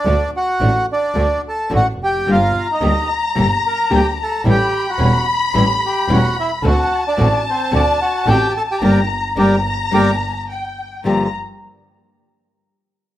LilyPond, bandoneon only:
\new Staff \with { instrumentName = "Bandoneon" } { \time 4/4 \key g \minor \tempo 4 = 110 <d' d''>8 <fis' fis''>4 <d' d''>4 <a' a''>8 <fis' fis''>8 <g' g''>8 | <f' f''>8. <ees' ees''>8. r4 <bes' bes''>8 <g' g''>8 <a' a''>8 | <g' g''>8. <fis' fis''>8. r4 <g' g''>8 <fis' fis''>8 <e' e''>8 | <fis' fis''>8. <d' d''>8. <c' c''>8 <d' d''>8 <fis' fis''>8 <g' g''>8 <a' a''>16 <g' g''>16 |
<g' bes' d''>8 r8 <g' bes' d''>8 r8 <g' bes' d''>8 r4. | r1 | }